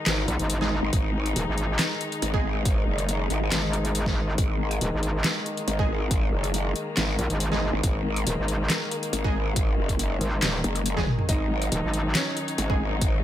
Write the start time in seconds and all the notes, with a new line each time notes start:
Already playing: D#3 G#3 D#4
0.06 G#1, snare, clap, closed hi-hat
0.28 A#1, closed hi-hat
0.39 G#1, closed hi-hat
0.50 closed hi-hat
0.61 G#3 D#4 G#4, snare
0.83 G#1
0.93 G#1, kick, closed hi-hat
1.26 closed hi-hat
1.36 D#1, closed hi-hat
1.47 G#1
1.58 closed hi-hat
1.79 snare, clap, closed hi-hat
2.01 closed hi-hat
2.12 closed hi-hat
2.22 G#1, closed hi-hat
2.34 G#3 D#4 G#4, kick
2.65 kick, closed hi-hat
2.87 F#1
2.98 closed hi-hat
3.09 closed hi-hat
3.30 G#1, closed hi-hat
3.52 G#1, snare, clap, closed hi-hat
3.73 closed hi-hat
3.85 closed hi-hat
3.95 closed hi-hat
4.06 kick, snare
4.38 G#1 A#3, kick, closed hi-hat
4.71 closed hi-hat
4.81 D#1, closed hi-hat
4.93 G#1
5.03 closed hi-hat
5.24 snare, clap, closed hi-hat
5.46 closed hi-hat
5.57 closed hi-hat
5.68 G#1, closed hi-hat
5.79 G#3 D#4 G#4, kick
6.11 kick, closed hi-hat
6.32 F#1
6.44 closed hi-hat
6.54 closed hi-hat
6.76 closed hi-hat
6.97 G#1, snare, clap, closed hi-hat
7.19 A#1, closed hi-hat
7.30 G#1, closed hi-hat
7.40 closed hi-hat
7.52 G#3 D#4 G#4, snare
7.73 G#1
7.83 G#1, kick, closed hi-hat
8.16 closed hi-hat
8.27 D#1, closed hi-hat
8.38 G#1
8.48 closed hi-hat
8.70 snare, clap, closed hi-hat
8.91 closed hi-hat
9.03 closed hi-hat
9.13 G#1, closed hi-hat
9.24 G#3 D#4 G#4, kick
9.56 kick, closed hi-hat
9.78 F#1
9.89 kick, closed hi-hat
9.99 closed hi-hat
10.21 G#1, closed hi-hat
10.42 D#1, snare, clap, closed hi-hat
10.64 F#1, closed hi-hat
10.76 closed hi-hat
10.86 closed hi-hat
10.97 G#3 D#4 G#4, kick, snare, high tom
11.07 mid tom
11.19 mid tom
11.29 G#1 F#3 D#4 D#5, kick, closed hi-hat
11.62 closed hi-hat
11.72 D#1, closed hi-hat
11.83 G#1
11.94 closed hi-hat
12.15 C#4 C#5, snare, clap, closed hi-hat
12.37 closed hi-hat
12.48 closed hi-hat
12.58 G#1, closed hi-hat
12.70 G#3 D#4 G#4, kick
13.01 kick, closed hi-hat